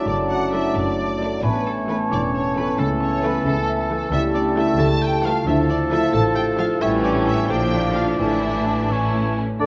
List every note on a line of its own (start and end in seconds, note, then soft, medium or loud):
0.00 1.40 F#3 soft
0.00 0.29 A3 soft
0.00 1.40 A3 soft
0.00 0.75 D4 soft
0.00 1.40 D4 soft
0.00 0.51 A4 soft
0.00 0.98 D5 soft
0.00 1.40 D5 soft
0.00 1.46 F#5 soft
0.00 1.40 A5 medium
0.07 0.62 F#1 medium
0.07 0.61 F#2 medium
0.07 1.46 F#2 soft
0.07 2.79 A3 soft
0.07 0.29 D4 medium
0.07 0.16 D5 medium
0.30 1.66 A3 soft
0.30 0.52 F#4 medium
0.30 0.53 F#5 medium
0.52 0.70 F#3 soft
0.52 0.70 A3 soft
0.52 0.70 A3 medium
0.52 0.70 D4 soft
0.52 0.74 E4 medium
0.52 1.21 A4 soft
0.52 0.75 E5 medium
0.74 1.30 F#1 medium
0.74 1.29 F#2 medium
0.74 1.39 D4 medium
0.74 1.46 D4 soft
0.74 1.44 D5 medium
0.99 1.46 D5 soft
1.20 1.37 F#3 soft
1.20 1.37 A3 soft
1.20 1.38 A3 medium
1.20 1.39 D4 medium
1.20 1.88 A4 soft
1.43 1.97 A1 medium
1.43 1.97 A2 medium
1.43 2.81 A2 medium
1.43 4.08 E3 medium
1.43 4.08 A3 medium
1.43 1.65 B3 medium
1.43 2.78 C#4 medium
1.43 1.66 B4 medium
1.43 2.80 C#5 soft
1.43 4.08 A5 medium
1.66 1.88 A3 medium
1.66 3.00 A3 soft
1.66 1.74 A4 soft
1.89 2.06 E3 medium
1.89 2.06 A3 medium
1.89 2.07 A3 medium
1.89 2.10 B3 medium
1.89 2.07 C#4 medium
1.89 2.56 A4 soft
1.89 1.98 B4 medium
2.12 2.65 E1 medium
2.12 2.65 E2 medium
2.12 5.49 C#4 soft
2.12 2.32 D4 medium
2.12 2.21 D5 medium
2.34 2.55 C#4 medium
2.34 5.49 C#5 soft
2.34 2.56 C#5 medium
2.56 2.73 E3 medium
2.56 2.73 A3 medium
2.56 2.78 B3 medium
2.56 2.73 C#4 medium
2.56 3.22 A4 soft
2.56 2.78 B4 medium
2.79 3.32 C#2 medium
2.79 3.32 C#3 medium
2.79 4.12 C#3 medium
2.79 3.00 A3 medium
2.79 4.10 A3 medium
2.79 4.10 E4 medium
2.79 5.19 A4 medium
2.79 2.87 A4 medium
3.01 4.34 A3 soft
3.01 3.22 C#4 medium
3.01 3.23 C#5 medium
3.24 3.40 E3 medium
3.24 3.40 A3 medium
3.24 3.45 B3 medium
3.24 3.90 A4 soft
3.24 3.46 B4 medium
3.46 3.99 C#2 medium
3.46 3.98 C#3 medium
3.46 4.09 A3 medium
3.46 5.49 E4 medium
3.46 4.11 A4 medium
3.69 5.49 E5 medium
3.90 4.06 E3 medium
3.90 4.06 A3 medium
3.90 4.07 A3 medium
3.90 4.55 A4 medium
4.12 4.66 C#2 medium
4.12 4.65 C#3 medium
4.12 5.49 C#3 medium
4.12 5.17 G3 medium
4.12 6.77 A3 medium
4.12 6.50 A3 medium
4.12 4.33 E4 medium
4.12 5.31 G4 medium
4.12 4.20 E5 medium
4.12 6.59 A5 medium
4.34 5.68 A3 soft
4.34 4.55 D4 medium
4.34 4.43 D5 medium
4.57 4.74 E3 medium
4.57 4.74 G3 medium
4.57 4.74 A3 medium
4.57 4.78 E4 medium
4.57 5.23 A4 medium
4.57 4.80 E5 medium
4.79 5.33 C#2 medium
4.79 5.33 C#3 medium
4.79 5.49 G4 medium
4.79 5.00 A4 loud
4.79 5.03 A5 medium
5.02 5.23 G4 medium
5.02 5.49 G5 medium
5.02 5.25 G5 medium
5.24 5.41 E3 medium
5.24 5.41 G3 medium
5.24 5.42 A3 medium
5.24 5.46 F4 medium
5.24 5.90 A4 soft
5.24 5.47 F5 medium
5.47 6.00 D2 medium
5.47 6.00 D3 medium
5.47 6.83 D3 medium
5.47 6.78 F3 medium
5.47 5.68 E4 medium
5.47 6.79 F4 medium
5.47 6.83 A4 medium
5.47 5.55 E5 medium
5.69 7.52 A3 soft
5.69 5.91 D4 medium
5.69 5.78 D5 medium
5.91 6.08 F3 medium
5.91 6.08 A3 medium
5.91 6.08 D4 medium
5.91 6.13 E4 medium
5.91 6.56 A4 medium
5.91 6.14 E5 medium
6.13 6.67 A1 medium
6.13 6.67 A2 medium
6.13 6.83 F4 medium
6.13 6.34 A4 medium
6.13 6.23 A5 medium
6.36 6.57 G4 medium
6.36 6.83 F5 medium
6.36 6.44 G5 medium
6.58 6.76 F3 medium
6.58 6.75 A3 medium
6.58 6.75 D4 medium
6.58 6.80 F4 medium
6.58 7.51 A4 medium
6.58 6.67 F5 medium
6.80 7.46 A1 medium
6.80 7.51 A2 medium
6.80 7.46 A2 medium
6.80 7.51 E3 medium
6.80 7.46 E3 medium
6.80 7.46 G3 medium
6.80 7.50 G3 medium
6.80 7.46 A3 medium
6.80 7.53 A3 medium
6.80 7.46 C#4 medium
6.80 7.49 C#4 medium
6.80 7.03 E4 medium
6.80 7.52 C#5 medium
6.80 6.90 E5 medium
6.80 7.49 G5 medium
7.04 7.52 G3 soft
7.04 7.26 D4 medium
7.04 7.12 D5 medium
7.27 7.48 E4 medium
7.27 7.52 E4 soft
7.27 7.52 C#5 soft
7.27 7.50 E5 medium
7.49 8.18 A#1 medium
7.49 8.21 A#2 medium
7.49 8.19 A#2 medium
7.49 8.19 D3 medium
7.49 8.19 F3 medium
7.49 8.20 F3 medium
7.49 8.22 A#3 medium
7.49 8.19 D4 medium
7.49 8.91 D4 medium
7.49 7.93 G4 medium
7.49 8.93 D5 medium
7.49 8.19 F5 medium
7.49 7.95 G5 medium
7.73 8.21 F3 soft
7.96 8.92 D4 soft
7.96 8.18 F4 medium
7.96 8.65 D5 soft
7.96 8.20 F5 medium
8.19 9.37 A1 medium
8.19 8.88 A2 soft
8.19 9.37 A2 medium
8.19 8.89 D3 medium
8.19 9.34 E3 soft
8.19 9.35 E3 medium
8.19 8.89 A3 medium
8.19 8.86 A3 medium
8.19 8.89 D4 soft
8.19 8.86 E4 medium
8.19 8.87 E4 soft
8.19 8.88 E5 medium
8.19 9.34 A5 medium
8.43 9.11 A3 soft
8.66 9.35 E4 soft
8.66 8.92 D5 soft
8.89 9.61 A2 soft
8.89 9.40 E3 soft
8.89 9.38 A3 soft
8.89 9.39 C#4 soft
8.89 9.11 C#4 medium
8.89 9.36 C#4 soft
8.89 9.38 E4 soft
8.89 9.37 C#5 soft
9.12 9.66 A3 soft
9.12 9.24 A3 medium
9.36 9.47 C#4 medium
9.36 9.61 E4 soft
9.36 9.61 C#5 soft
9.59 9.66 D2 medium
9.59 9.66 D3 medium
9.59 9.66 D4 medium
9.59 9.66 A4 medium
9.59 9.66 D5 medium